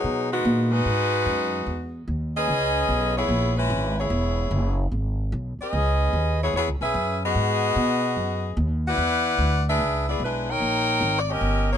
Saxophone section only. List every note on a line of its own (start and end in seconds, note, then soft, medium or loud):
0.00 0.32 F#3 loud
0.00 0.31 B3 medium
0.00 0.32 D#4 loud
0.00 0.32 G#4 loud
0.32 0.70 D#3 medium
0.32 0.70 G#3 medium
0.32 0.69 B3 medium
0.32 0.70 F#4 loud
0.72 1.94 G#3 loud
0.72 1.94 D#4 medium
0.72 1.94 F#4 loud
0.72 1.94 B4 loud
2.36 3.13 C#4 loud
2.36 3.12 G#4 loud
2.36 3.13 B4 loud
2.36 3.12 D#5 loud
3.16 3.57 B3 medium
3.16 3.56 E4 loud
3.16 3.57 G#4 medium
3.16 3.57 C#5 loud
3.57 3.94 G#3 medium
3.57 3.94 C#4 medium
3.57 3.95 E4 medium
3.57 3.94 B4 medium
3.99 4.79 B3 medium
3.99 4.79 E4 medium
3.99 4.79 G#4 medium
3.99 4.79 C#5 loud
5.61 6.38 C#4 medium
5.61 6.38 G#4 medium
5.61 6.37 B4 medium
5.61 6.38 D#5 loud
6.42 6.54 B3 medium
6.42 6.55 E4 medium
6.42 6.55 G#4 medium
6.42 6.54 C#5 loud
6.57 6.68 B3 medium
6.57 6.68 E4 medium
6.57 6.68 G#4 medium
6.57 6.68 C#5 medium
6.82 7.19 C#4 medium
6.82 7.20 G#4 medium
6.82 7.19 B4 medium
6.82 7.20 E5 loud
7.25 8.59 B3 medium
7.25 8.59 F#4 medium
7.25 8.59 G#4 loud
7.25 8.59 D#5 loud
8.87 9.63 E4 medium
8.87 9.63 B4 loud
8.87 9.63 D5 medium
8.87 9.63 F#5 loud
9.68 10.05 D4 medium
9.68 10.05 G#4 medium
9.68 10.05 B4 medium
9.68 10.05 E5 loud
10.09 10.22 B3 medium
10.09 10.21 E4 medium
10.09 10.22 G#4 medium
10.09 10.22 D5 medium
10.23 10.47 G#3 medium
10.23 10.47 D4 medium
10.23 10.47 E4 medium
10.23 10.47 B4 medium
10.50 11.20 D#4 loud
10.50 11.20 A#4 loud
10.50 11.20 C#5 loud
10.50 11.20 G5 loud
11.20 11.29 D5 medium
11.30 11.70 C#4 loud
11.30 11.70 G4 loud
11.30 11.70 A#4 loud
11.30 11.70 D#5 loud
11.71 11.78 A#3 medium
11.71 11.78 D#4 medium
11.71 11.78 G4 medium
11.71 11.78 C#5 medium